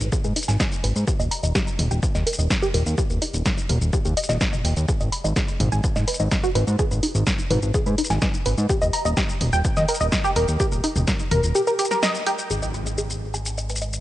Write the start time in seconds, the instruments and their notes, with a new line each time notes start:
0.01 analog synth bass G#1, shaker
0.12 synth arpeggio sound G#4, kick, shaker
0.24 analog synth bass G#2, synth arpeggio sound G#4, shaker
0.36 synth arpeggio sound D#4, open hi-hat, shaker
0.42 shaker
0.48 analog synth bass G#1, synth arpeggio sound G#5, snare, shaker
0.60 synth arpeggio sound D#5, kick, snare, shaker
0.72 shaker
0.84 analog synth bass G#1, synth arpeggio sound B4, open hi-hat, shaker
0.96 analog synth bass G#2, shaker
1.07 synth arpeggio sound G4, kick, shaker
1.20 analog synth bass D#1, synth arpeggio sound D#5, shaker
1.31 synth arpeggio sound A#5, open hi-hat, shaker
1.43 analog synth bass D#1, synth arpeggio sound D#5, shaker
1.55 synth arpeggio sound G4, kick, snare, shaker
1.67 shaker
1.79 analog synth bass D#1, mid tom, open hi-hat
1.91 analog synth bass D#1, synth arpeggio sound G5, shaker
2.03 kick, shaker
2.15 analog synth bass D#2, synth arpeggio sound D#5, snare, shaker
2.26 synth arpeggio sound A#4, open hi-hat, shaker
2.33 shaker
2.39 analog synth bass D#1, synth arpeggio sound D#5, shaker
2.50 kick, snare, shaker
2.62 synth arpeggio sound G4, shaker
2.74 analog synth bass D#1, synth arpeggio sound A#4, open hi-hat, shaker
2.86 analog synth bass D#2, shaker
2.98 synth arpeggio sound G4, kick, shaker
3.10 analog synth bass D#1, shaker
3.22 synth arpeggio sound D#4, open hi-hat, shaker
3.34 analog synth bass D#1, shaker
3.46 kick, snare, shaker
3.58 shaker
3.69 analog synth bass D#1, synth arpeggio sound A#4, mid tom, open hi-hat
3.81 analog synth bass D#1, shaker
3.93 synth arpeggio sound G4, kick, shaker
4.05 analog synth bass D#2, synth arpeggio sound G4, shaker
4.17 synth arpeggio sound D#5, open hi-hat, shaker
4.23 shaker
4.29 analog synth bass D#1, synth arpeggio sound D#5, snare, shaker
4.41 synth arpeggio sound A#5, kick, snare, shaker
4.53 mid tom, shaker
4.65 analog synth bass D#1, synth arpeggio sound G5, open hi-hat, shaker
4.77 analog synth bass D#2, shaker
4.88 synth arpeggio sound G#4, kick, shaker
5.01 analog synth bass G#1, synth arpeggio sound D#5, shaker
5.12 synth arpeggio sound B5, open hi-hat, shaker
5.24 analog synth bass G#1, synth arpeggio sound D#5, shaker
5.36 synth arpeggio sound G#4, kick, snare, shaker
5.48 shaker
5.60 analog synth bass G#1, mid tom, open hi-hat
5.72 analog synth bass G#1, synth arpeggio sound G#5, shaker
5.84 kick, shaker
5.96 analog synth bass G#2, synth arpeggio sound D#5, snare, shaker
6.08 synth arpeggio sound B4, open hi-hat, shaker
6.14 shaker
6.20 analog synth bass G#1, synth arpeggio sound D#5, shaker
6.31 kick, snare, shaker
6.43 synth arpeggio sound F#4, shaker
6.55 analog synth bass G#1, synth arpeggio sound B4, open hi-hat, shaker
6.67 analog synth bass G#2, shaker
6.79 synth arpeggio sound G#4, kick, shaker
6.91 analog synth bass G#1, shaker
7.03 synth arpeggio sound D#4, open hi-hat, shaker
7.15 analog synth bass G#1, shaker
7.27 kick, snare, shaker
7.39 shaker
7.50 analog synth bass G#1, synth arpeggio sound B4, mid tom, open hi-hat
7.63 analog synth bass G#1, shaker
7.74 synth arpeggio sound G#4, kick, shaker
7.86 analog synth bass G#2, synth arpeggio sound B4, shaker
7.98 synth arpeggio sound D#4, open hi-hat, shaker
8.04 shaker
8.10 analog synth bass G#1, synth arpeggio sound G#5, snare, shaker
8.22 synth arpeggio sound D#5, kick, snare, shaker
8.34 shaker
8.46 analog synth bass G#1, synth arpeggio sound B4, open hi-hat, shaker
8.58 analog synth bass G#2, shaker
8.69 synth arpeggio sound G4, kick, shaker
8.82 analog synth bass D#1, synth arpeggio sound D#5, shaker
8.93 synth arpeggio sound A#5, open hi-hat, shaker
9.05 analog synth bass D#1, synth arpeggio sound D#5, shaker
9.17 synth arpeggio sound G4, kick, snare, shaker
9.29 shaker
9.41 analog synth bass D#1, mid tom, open hi-hat
9.53 analog synth bass D#1, synth arpeggio sound G5, shaker
9.65 kick, shaker
9.77 analog synth bass D#2, synth arpeggio sound D#5, snare, shaker
9.88 synth arpeggio sound A#4, open hi-hat, shaker
9.94 shaker
10.00 analog synth bass D#1, synth arpeggio sound D#5, shaker
10.12 kick, snare, shaker
10.24 synth arpeggio sound G4, shaker
10.36 analog synth bass D#1, synth arpeggio sound A#4, open hi-hat, shaker
10.48 analog synth bass D#2, shaker
10.60 synth arpeggio sound G4, kick, shaker
10.72 analog synth bass D#1, shaker
10.84 synth arpeggio sound D#4, open hi-hat, shaker
10.96 analog synth bass D#1, mid tom, shaker
11.08 kick, snare, shaker
11.20 shaker
11.31 analog synth bass D#1, synth arpeggio sound A#4, mid tom, open hi-hat, shaker
11.43 analog synth bass D#1, shaker
11.55 synth arpeggio sound G4, shaker
11.67 synth arpeggio sound A#4, shaker
11.79 synth arpeggio sound G4, open hi-hat, shaker
11.85 shaker
11.91 synth arpeggio sound A#4, snare, shaker
12.03 synth arpeggio sound D#5, snare, shaker
12.15 shaker
12.27 synth arpeggio sound G4, open hi-hat, shaker
12.39 shaker
12.50 analog synth bass G#1, synth arpeggio sound G#4, impact, shaker
12.62 synth arpeggio sound D#5, shaker
12.74 synth arpeggio sound B5, shaker
12.86 synth arpeggio sound D#5, shaker
12.98 synth arpeggio sound G#4, shaker
13.10 shaker
13.34 synth arpeggio sound G#5, shaker
13.46 shaker
13.58 synth arpeggio sound D#5, shaker
13.69 synth arpeggio sound B4, shaker
13.76 shaker
13.81 synth arpeggio sound D#5, shaker
13.93 shaker